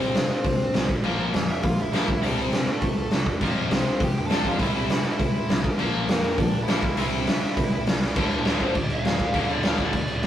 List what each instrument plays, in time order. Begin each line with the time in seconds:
Already playing: overdriven electric guitar C3 G3 C4
0.00 picked electric bass C2, lead electric guitar C4 C5
0.14 picked electric bass G1, overdriven electric guitar C3 G3, snare, open hi-hat
0.29 picked electric bass G1, lead electric guitar C4 C5
0.44 picked electric bass C2, overdriven electric guitar C3 G3, kick, open hi-hat
0.59 picked electric bass C2
0.74 picked electric bass C2, overdriven electric guitar C3 G3, snare, open hi-hat
0.89 picked electric bass A#1, kick
1.04 picked electric bass A#1, overdriven electric guitar A#2 F3 A#3, crash
1.19 picked electric bass A#1
1.34 picked electric bass F1, overdriven electric guitar A#2 F3, snare, open hi-hat
1.49 picked electric bass F2, lead electric guitar E4 E5
1.63 picked electric bass A#2, overdriven electric guitar A#2 F3, lead electric guitar F5, kick, open hi-hat
1.67 lead electric guitar F4
1.77 picked electric bass A#1
1.81 lead electric guitar E4 E5
1.92 picked electric bass A#1, overdriven electric guitar A#2 F3 A#3, snare, open hi-hat
2.08 picked electric bass C2, kick
2.22 picked electric bass C2, overdriven electric guitar C3 G3 C4, lead electric guitar D4 D5, open hi-hat
2.36 picked electric bass C2, lead electric guitar C4 C5
2.52 picked electric bass G1, overdriven electric guitar C3 G3, snare, open hi-hat
2.67 picked electric bass G2, lead electric guitar A3
2.71 lead electric guitar A4
2.82 picked electric bass C3, overdriven electric guitar C3 G3, kick, open hi-hat
2.96 picked electric bass C2
3.11 picked electric bass C2, overdriven electric guitar C3 G3, snare, open hi-hat
3.26 picked electric bass E1, kick
3.41 overdriven electric guitar F2 C3 F3, kick, crash
3.56 picked electric bass F1
3.71 picked electric bass C2, overdriven electric guitar F2 C3, lead electric guitar C4 C5, snare, open hi-hat
3.85 picked electric bass C2
4.00 picked electric bass F2, overdriven electric guitar F2 C3, lead electric guitar G4 G5, kick, open hi-hat
4.14 picked electric bass F1
4.19 lead electric guitar G5
4.25 picked electric bass F1, lead electric guitar A4 A5
4.30 overdriven electric guitar F2 C3 F3, snare, open hi-hat
4.44 picked electric bass F1, lead electric guitar F4 F5, kick
4.59 picked electric bass C2, overdriven electric guitar C3 G3 C4, lead electric guitar E4 E5, kick, open hi-hat
4.73 picked electric bass C2, lead electric guitar E4 E5
4.88 picked electric bass G1, overdriven electric guitar C3 G3, snare, open hi-hat
5.03 picked electric bass G1, lead electric guitar E4 E5
5.20 picked electric bass C2, overdriven electric guitar C3 G3, kick, open hi-hat
5.34 picked electric bass C2
5.48 picked electric bass C2, overdriven electric guitar C3 G3, snare, open hi-hat
5.64 picked electric bass A#1, distorted electric guitar A#2 F3 A#3, kick
5.78 picked electric bass A#1, overdriven electric guitar A#2 F3 A#3, crash
5.92 picked electric bass A#1
6.07 picked electric bass F1, overdriven electric guitar A#2 F3, lead electric guitar A#3 A#4, snare, open hi-hat
6.23 picked electric bass F2
6.38 picked electric bass A#2, overdriven electric guitar A#2 F3, lead electric guitar D4 D5, kick, open hi-hat
6.53 picked electric bass A#1
6.63 lead electric guitar E4 E5
6.67 picked electric bass A#1, overdriven electric guitar A#2 F3 A#3, snare, open hi-hat
6.82 picked electric bass C2, distorted electric guitar C3 G3 C4, kick
6.96 picked electric bass C2, overdriven electric guitar C3 G3 C4, lead electric guitar E4, open hi-hat
7.01 lead electric guitar E5
7.12 picked electric bass C2
7.27 picked electric bass G1, overdriven electric guitar C3 G3, snare, open hi-hat
7.42 picked electric bass G2
7.57 picked electric bass C3, overdriven electric guitar C3 G3, kick, open hi-hat
7.72 picked electric bass C2
7.86 picked electric bass C2, overdriven electric guitar C3 G3, snare, open hi-hat
8.01 picked electric bass C2, snare
8.16 picked electric bass D1, overdriven electric guitar D2 A2 D3, kick, crash
8.31 picked electric bass D1, crash
8.45 picked electric bass D1, overdriven electric guitar D2 A2 D3, snare, crash
8.60 picked electric bass D1, lead electric guitar C5, kick, crash
8.75 overdriven electric guitar D2 A2, picked electric bass D2, lead electric guitar D5, kick, crash
8.89 picked electric bass D1, lead electric guitar F5, crash
9.04 overdriven electric guitar D2 A2, picked electric bass D2, snare, crash
9.18 picked electric bass D1, distorted electric guitar D2 A2 D3, kick, crash
9.34 picked electric bass D1, overdriven electric guitar D2 A2 D3, kick, crash
9.49 picked electric bass D1, lead electric guitar D5, crash
9.63 picked electric bass D1, overdriven electric guitar D2 A2 D3, lead electric guitar F5, snare, crash
9.78 picked electric bass D1, lead electric guitar D5, kick, crash
9.93 picked electric bass D2, overdriven electric guitar D2 A2, lead electric guitar D5, kick, crash
10.07 picked electric bass D1, crash
10.22 overdriven electric guitar D2 A2, picked electric bass D2, snare, crash